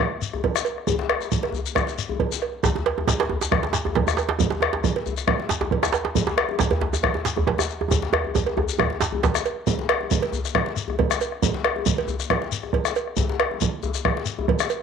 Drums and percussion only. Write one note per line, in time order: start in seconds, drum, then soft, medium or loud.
0.00 bombo rim loud
0.00 bombo low medium
0.12 bombo rim soft
0.22 shekere medium
0.33 bombo rim soft
0.33 djembe slap soft
0.33 djembe tone medium
0.33 djembe bass medium
0.44 bombo rim soft
0.44 bombo low loud
0.44 cowbell medium
0.55 bombo rim medium
0.55 djembe slap medium
0.55 shekere soft
0.65 cowbell soft
0.65 djembe slap soft
0.65 shekere soft
0.78 bombo rim soft
0.87 bombo rim soft
0.87 bombo low medium
0.87 djembe bass medium
0.87 shekere medium
0.99 bombo rim soft
0.99 djembe slap medium
1.09 bombo rim medium
1.09 cowbell medium
1.21 bombo rim soft
1.21 djembe slap soft
1.21 djembe tone medium
1.21 shekere soft
1.32 bombo rim soft
1.32 bombo low medium
1.32 shekere medium
1.43 bombo rim soft
1.43 cowbell soft
1.43 djembe slap medium
1.52 djembe slap soft
1.52 djembe bass medium
1.52 shekere soft
1.66 shekere soft
1.75 bombo rim loud
1.75 bombo low loud
1.75 cowbell medium
1.75 djembe slap soft
1.75 shekere soft
1.87 djembe slap medium
1.87 shekere soft
1.98 bombo rim soft
1.98 shekere medium
2.09 djembe tone medium
2.09 djembe bass medium
2.20 bombo low medium
2.20 cowbell soft
2.20 djembe slap soft
2.32 djembe slap medium
2.32 shekere soft
2.42 bombo rim soft
2.42 cowbell soft
2.54 djembe slap soft
2.63 bombo low medium
2.63 djembe slap loud
2.63 djembe slap soft
2.63 djembe bass medium
2.63 shekere medium
2.75 djembe slap medium
2.75 djembe tone medium
2.86 cowbell medium
2.86 djembe slap medium
2.98 djembe tone medium
3.07 bombo rim soft
3.07 bombo low loud
3.07 djembe slap medium
3.07 shekere medium
3.20 cowbell soft
3.20 djembe slap loud
3.20 djembe slap medium
3.30 djembe slap soft
3.30 djembe tone medium
3.30 djembe bass medium
3.41 djembe slap medium
3.41 djembe slap soft
3.41 shekere soft
3.52 bombo rim loud
3.52 bombo low loud
3.52 cowbell medium
3.52 djembe slap soft
3.52 djembe tone medium
3.63 bombo rim soft
3.63 djembe slap medium
3.73 djembe slap loud
3.73 shekere medium
3.85 bombo rim soft
3.85 djembe slap soft
3.85 djembe tone medium
3.85 djembe bass medium
3.95 bombo rim soft
3.95 bombo low loud
3.95 cowbell soft
3.95 djembe slap medium
4.07 bombo rim medium
4.07 djembe slap medium
4.07 djembe tone medium
4.07 shekere soft
4.17 cowbell soft
4.17 djembe slap medium
4.17 djembe slap soft
4.17 shekere soft
4.29 bombo rim soft
4.29 djembe slap loud
4.39 bombo low loud
4.39 djembe slap soft
4.39 djembe tone medium
4.39 djembe bass medium
4.39 shekere medium
4.50 djembe slap medium
4.52 djembe slap medium
4.61 bombo rim loud
4.61 cowbell medium
4.61 djembe tone medium
4.73 djembe slap medium
4.73 djembe tone soft
4.84 bombo rim soft
4.84 bombo low loud
4.84 shekere medium
4.96 cowbell soft
4.96 djembe slap medium
5.06 djembe slap soft
5.06 djembe bass medium
5.06 shekere soft
5.17 bombo rim soft
5.17 djembe slap soft
5.17 shekere soft
5.27 bombo rim loud
5.27 bombo low loud
5.27 cowbell medium
5.27 djembe slap soft
5.40 bombo rim soft
5.40 djembe slap medium
5.49 djembe slap loud
5.49 shekere medium
5.61 bombo rim soft
5.61 djembe slap soft
5.61 djembe slap medium
5.61 djembe tone medium
5.61 djembe bass medium
5.71 bombo rim soft
5.71 bombo low loud
5.71 cowbell medium
5.83 bombo rim medium
5.83 djembe slap medium
5.83 shekere soft
5.92 cowbell medium
5.92 djembe slap loud
5.92 djembe slap soft
5.92 shekere soft
6.05 bombo rim soft
6.05 djembe slap medium
6.15 bombo low loud
6.15 djembe slap soft
6.15 djembe bass medium
6.15 shekere medium
6.27 djembe slap medium
6.38 bombo rim medium
6.38 cowbell medium
6.49 djembe tone medium
6.59 bombo rim soft
6.59 bombo low loud
6.59 djembe slap loud
6.59 shekere medium
6.71 cowbell soft
6.71 djembe slap medium
6.71 djembe bass medium
6.81 djembe slap soft
6.81 djembe slap medium
6.81 djembe bass medium
6.92 bombo rim soft
6.92 djembe slap soft
6.92 djembe tone medium
6.92 shekere soft
7.03 bombo rim medium
7.03 bombo low medium
7.03 cowbell medium
7.03 djembe slap soft
7.14 bombo rim soft
7.14 djembe slap medium
7.14 djembe tone medium
7.25 djembe slap loud
7.25 shekere medium
7.37 bombo rim soft
7.37 djembe slap soft
7.37 djembe tone medium
7.37 djembe bass medium
7.47 bombo rim soft
7.47 bombo low medium
7.47 cowbell medium
7.47 djembe slap medium
7.58 bombo rim medium
7.58 djembe slap medium
7.58 djembe tone medium
7.58 shekere soft
7.70 shekere soft
7.81 bombo rim soft
7.81 djembe tone medium
7.90 bombo rim soft
7.90 bombo low medium
7.90 djembe slap soft
7.90 djembe tone loud
7.90 djembe bass medium
7.90 shekere medium
8.02 bombo rim soft
8.02 djembe slap medium
8.13 bombo rim medium
8.13 cowbell medium
8.13 djembe tone loud
8.24 djembe tone medium
8.35 bombo low medium
8.35 djembe slap soft
8.35 djembe tone loud
8.35 shekere medium
8.46 cowbell soft
8.46 djembe slap medium
8.57 bombo rim soft
8.57 djembe tone loud
8.57 djembe bass medium
8.69 djembe slap soft
8.69 shekere soft
8.79 bombo rim loud
8.79 bombo low loud
8.79 cowbell soft
8.79 djembe tone loud
8.90 djembe slap medium
9.01 bombo rim soft
9.01 djembe slap loud
9.01 shekere medium
9.12 djembe tone medium
9.12 djembe bass medium
9.23 bombo rim soft
9.23 bombo low loud
9.23 cowbell medium
9.23 djembe slap loud
9.23 shekere soft
9.34 bombo rim medium
9.34 djembe slap medium
9.34 shekere soft
9.45 cowbell soft
9.45 shekere soft
9.67 bombo low loud
9.67 djembe slap soft
9.67 djembe bass medium
9.67 shekere medium
9.79 djembe slap medium
9.89 bombo rim loud
9.89 cowbell medium
10.01 djembe tone medium
10.11 bombo rim soft
10.11 bombo low loud
10.11 shekere medium
10.22 cowbell medium
10.22 djembe slap medium
10.32 djembe slap soft
10.32 djembe bass medium
10.32 shekere soft
10.44 bombo rim soft
10.44 djembe slap soft
10.44 shekere medium
10.55 bombo rim loud
10.55 bombo low loud
10.55 cowbell medium
10.55 djembe slap soft
10.66 bombo rim soft
10.66 djembe slap medium
10.76 shekere medium
10.88 bombo rim soft
10.88 djembe slap soft
10.88 djembe tone medium
10.88 djembe bass medium
10.99 bombo rim soft
10.99 bombo low loud
10.99 cowbell medium
11.10 bombo rim medium
11.10 djembe slap medium
11.10 shekere medium
11.21 cowbell medium
11.21 djembe slap soft
11.21 shekere soft
11.32 bombo rim soft
11.42 bombo low loud
11.42 djembe slap soft
11.42 djembe bass medium
11.42 shekere medium
11.54 djembe slap medium
11.64 bombo rim loud
11.64 cowbell medium
11.76 djembe tone medium
11.86 bombo rim soft
11.86 bombo low loud
11.86 shekere medium
11.98 cowbell medium
11.98 djembe slap medium
12.08 djembe slap soft
12.08 djembe bass medium
12.08 shekere soft
12.20 bombo rim soft
12.20 djembe slap soft
12.20 shekere medium
12.30 bombo rim loud
12.30 bombo low loud
12.30 cowbell medium
12.30 djembe slap soft
12.42 bombo rim soft
12.42 djembe slap medium
12.52 shekere medium
12.63 bombo rim soft
12.63 djembe slap soft
12.63 djembe tone medium
12.73 bombo rim soft
12.73 bombo low medium
12.73 cowbell medium
12.85 bombo rim medium
12.85 djembe slap medium
12.85 shekere soft
12.95 cowbell medium
12.95 djembe slap soft
12.95 shekere soft
13.07 bombo rim soft
13.16 bombo low medium
13.16 djembe slap soft
13.16 djembe bass medium
13.16 shekere medium
13.29 djembe slap medium
13.40 bombo rim medium
13.40 cowbell medium
13.51 djembe tone medium
13.61 bombo rim soft
13.61 bombo low loud
13.61 shekere medium
13.83 djembe slap soft
13.83 djembe bass medium
13.83 shekere soft
13.94 bombo rim soft
13.94 djembe slap soft
13.94 shekere soft
14.05 bombo rim loud
14.05 bombo low loud
14.05 cowbell medium
14.05 djembe slap soft
14.17 bombo rim soft
14.17 djembe slap medium
14.26 shekere medium
14.39 djembe slap soft
14.39 djembe tone medium
14.39 djembe bass medium
14.48 bombo rim soft
14.48 bombo low loud
14.48 cowbell medium
14.59 bombo rim medium
14.59 djembe slap medium
14.59 shekere soft
14.70 cowbell medium
14.70 djembe slap soft
14.70 shekere soft